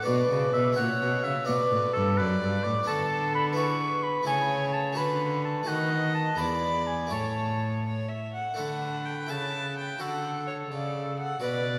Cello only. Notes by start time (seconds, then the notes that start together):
0.07 B2
0.31 C#3
0.55 B2
0.79 A#2
1.02 B2
1.26 C#3
1.49 B2
1.72 A2
1.96 G2
2.20 F#2
2.42 G2
2.65 A2
2.90 D3
4.28 C#3
4.98 D3
5.68 D#3
6.39 E2
7.13 A2
8.58 D3
9.29 C#3
10.01 D3
10.71 C#3
11.43 B2